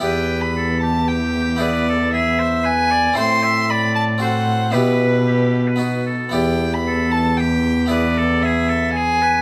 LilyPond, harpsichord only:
<<
  \new Staff \with { instrumentName = "Harpsichord" } { \time 3/4 \key e \minor \tempo 4 = 115 <b e' g'>2. | <b e' gis'>2. | <c' e' a'>2 <c' fis' a'>4 | <b e' g'>2 <b dis' fis'>4 |
<b e' g'>2. | <b e' gis'>2. | }
  \new Staff \with { instrumentName = "Harpsichord" } { \clef bass \time 3/4 \key e \minor e,2.~ | e,2. | a,2. | b,2~ b,8 r8 |
e,2.~ | e,2. | }
>>